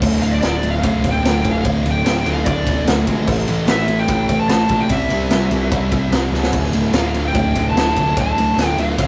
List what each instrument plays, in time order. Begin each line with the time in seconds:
0.01 picked electric bass D1, distorted electric guitar D2 A2 D3, kick, crash
0.21 picked electric bass D1, distorted electric guitar D2 A2 D3, electric slide guitar F5, ride
0.31 electric slide guitar D5
0.42 picked electric bass D1, distorted electric guitar D2 A2 D3, electric slide guitar D5, snare, ride
0.62 distorted electric guitar D2 A2 D3, ride
0.70 electric slide guitar F5
0.82 picked electric bass D1, distorted electric guitar D2 A2 D3, electric slide guitar F5, kick, ride
1.03 picked electric bass D1, distorted electric guitar D2 A2 D3, kick, ride
1.11 electric slide guitar G5
1.22 picked electric bass D1, distorted electric guitar D2 A2 D3, snare, ride
1.44 picked electric bass D1, distorted electric guitar D2 A2 D3, kick, ride
1.51 electric slide guitar F5
1.61 picked electric bass D1, electric slide guitar F5, ride
1.65 distorted electric guitar D2 A2 D3, kick
1.84 picked electric bass D1, distorted electric guitar D2 A2 D3, ride
1.91 electric slide guitar G5
2.05 picked electric bass D1, distorted electric guitar D2 A2 D3, snare, ride
2.25 picked electric bass D1, distorted electric guitar D2 A2 D3, ride
2.33 electric slide guitar F5
2.44 picked electric bass D1, distorted electric guitar D2 A2 D3, electric slide guitar D5, kick, ride
2.64 picked electric bass D1, distorted electric guitar D2 A2 D3, kick, ride
2.85 picked electric bass D1, distorted electric guitar D2 A2 D3, snare, ride
3.07 picked electric bass G#1, distorted electric guitar D2 A2 D3, kick, ride
3.25 picked electric bass A1, distorted electric guitar A2 E3 A3, kick, crash
3.48 picked electric bass A1, distorted electric guitar A2 E3 A3, ride
3.67 picked electric bass A1, distorted electric guitar A2 E3 A3, electric slide guitar E5, snare, ride
3.88 distorted electric guitar A2 E3 A3, ride
4.00 electric slide guitar G5
4.08 picked electric bass A1, distorted electric guitar A2 E3 A3, kick, ride
4.29 picked electric bass A1, distorted electric guitar A2 E3 A3, kick, ride
4.40 electric slide guitar A5
4.49 picked electric bass A1, distorted electric guitar A2 E3 A3, electric slide guitar A5, snare, ride
4.69 picked electric bass A#1, distorted electric guitar A2 E3 A3, kick, ride
4.80 electric slide guitar G5
4.89 picked electric bass C2, distorted electric guitar C3 G3 C4, electric slide guitar E5, kick, ride
5.09 picked electric bass C2, distorted electric guitar C3 G3 C4, ride
5.30 picked electric bass C2, distorted electric guitar C3 G3 C4, snare, ride
5.50 picked electric bass C2, distorted electric guitar C3 G3 C4, ride
5.71 picked electric bass C2, distorted electric guitar C3 G3 C4, kick, ride
5.92 picked electric bass C2, distorted electric guitar C3 G3 C4, kick, ride
6.10 picked electric bass C2, distorted electric guitar C3 G3 C4, snare, ride
6.30 picked electric bass C#2, distorted electric guitar C3 G3 C4, snare
6.43 snare
6.52 picked electric bass D1, distorted electric guitar D2 A2 D3, kick, crash
6.72 picked electric bass D1, distorted electric guitar D2 A2 D3, ride
6.92 picked electric bass D1, distorted electric guitar D2 A2 D3, electric slide guitar F5, snare, ride
7.13 distorted electric guitar D2 A2 D3, ride
7.28 electric slide guitar G5
7.34 picked electric bass D1, distorted electric guitar D2 A2 D3, kick, ride
7.54 picked electric bass D1, distorted electric guitar D2 A2 D3, kick, ride
7.70 picked electric bass D1, electric slide guitar A5
7.75 distorted electric guitar D2 A2 D3, snare, ride
7.96 picked electric bass D1, distorted electric guitar D2 A2 D3, kick, ride
8.16 picked electric bass D1, distorted electric guitar D2 A2, kick, ride
8.20 distorted electric guitar D3, electric slide guitar A5
8.36 picked electric bass D1, distorted electric guitar D2 A2 D3, ride
8.56 picked electric bass D1, distorted electric guitar D2 A2, snare, ride
8.60 distorted electric guitar D3
8.67 electric slide guitar G5
8.76 picked electric bass D1, distorted electric guitar D2 A2 D3, electric slide guitar F5, ride
8.97 picked electric bass D1, distorted electric guitar D2 A2 D3, kick, ride